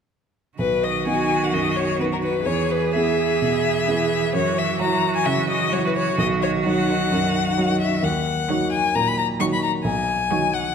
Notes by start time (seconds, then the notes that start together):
0.58 B1 D#3 F#4 B4
0.83 D#5
1.06 B3 D#4 F#4 G#5
1.43 F#5
1.53 F#2 D#5
1.76 C#5
1.99 B3 D#4 F#4 B4
2.12 A#4
2.22 B4
2.45 E2 E3 G#4 C#5
2.71 B4
2.95 B3 E4 G#4 E5
3.42 B2
3.88 B3 E4 G#4
4.34 F#2 F#4 C#5
4.58 E5
4.80 F#3 E4 F#4 A#5
5.16 G#5
5.26 C#3 E5
5.49 D#5
5.72 F#3 E4 F#4 C#5
5.86 B4
5.95 C#5
6.18 B1 D#3 D#5
6.42 C#5
6.66 F#3 D#4 F#4 F#5
7.12 F#2
7.58 F#3 D#4 F#4
7.80 E5
8.02 D#2 F#5
8.49 D#3 F#3 D#4 F#4
8.72 G#5
8.95 A#2 A#5
9.08 B5
9.18 A#5
9.40 D#3 F#3 D#4 F#4 C#6
9.53 B5
9.63 A#5
9.84 B1 G#5
10.31 D#3 F#3 D#4 F#4
10.53 F#5